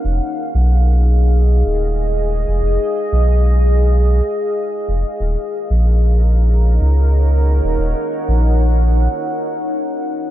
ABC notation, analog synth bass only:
X:1
M:4/4
L:1/16
Q:"Swing 16ths" 1/4=93
K:Ebm
V:1 name="Analog synth bass" clef=bass
F,,, z2 C,,6- C,, E,,,4- E,,, F,,, | F,,, z2 C,,6- C,, z4 F,,, z | E,,, z2 B,,,6- B,,, D,,4- D,, E,,, | E,,, z2 B,,,4- B,,, z8 |]